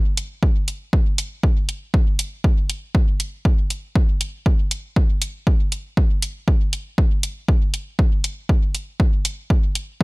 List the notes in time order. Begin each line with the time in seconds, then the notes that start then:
0.17 closed hi-hat
0.43 kick
0.68 closed hi-hat
0.93 kick
1.18 closed hi-hat
1.43 kick
1.69 closed hi-hat
1.94 kick
2.19 closed hi-hat
2.44 kick
2.70 closed hi-hat
2.95 kick
3.20 closed hi-hat
3.45 kick
3.70 closed hi-hat
3.96 kick
4.21 closed hi-hat
4.46 kick
4.71 closed hi-hat
4.96 kick
5.22 closed hi-hat
5.47 kick
5.72 closed hi-hat
5.97 kick
6.22 closed hi-hat
6.48 kick
6.73 closed hi-hat
6.98 kick
7.23 closed hi-hat
7.48 kick
7.74 closed hi-hat
7.99 kick
8.24 closed hi-hat
8.49 kick
8.75 closed hi-hat
9.00 kick
9.25 closed hi-hat
9.50 kick
9.75 closed hi-hat